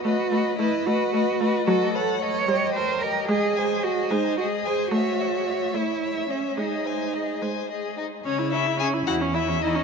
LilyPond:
<<
  \new Staff \with { instrumentName = "Violin" } { \time 6/8 \key b \major \tempo 4. = 73 dis''8 dis''8 dis''8 dis''8 dis''8 dis''8 | \key cis \minor dis''8 fis''8 dis''8 dis''8 cis''8 dis''8 | dis''8 gis''8 dis''8 gis''8 dis''8 gis''8 | cis''8 e''8 cis''8 e''8 cis''8 e''8 |
dis''8 gis''8 dis''8 gis''8 dis''8 dis''8 | cis''8 e''8 gis''8 fis''8 e''8 dis''8 | }
  \new Staff \with { instrumentName = "Violin" } { \time 6/8 \key b \major b'8 b'8 b'8 b'8 b'8 b'8 | \key cis \minor a'8 cis''8 a'8 g'8 ais'8 g'8 | gis'8 bis'8 gis'8 bis'8 gis'8 bis'8 | e''8 cis''8 e''8 cis''8 e''8 cis''8 |
gis'8 bis'8 gis'8 bis'8 gis'8 dis'8 | cis'8 e'8 gis'8 fis'8 e'8 dis'8 | }
  \new Staff \with { instrumentName = "Cello" } { \time 6/8 \key b \major fis'4 e'8 fis'4. | \key cis \minor fis'8 a'8 cis''4 bis'8 ais'8 | gis'4 fis'8 dis'8 fis'8 gis'8 | fis'4. e'4 cis'8 |
dis'4. r4. | cis4. e,4. | }
  \new Staff \with { instrumentName = "Viola" } { \time 6/8 \key b \major a8 a8 a8 a8 a8 a8 | \key cis \minor fis4. g4. | gis4. gis4. | a4. a4. |
gis4. gis4. | cis'16 e'16 cis'16 e'16 cis'16 e'16 e'16 cis'16 e'16 cis'16 e'16 cis'16 | }
>>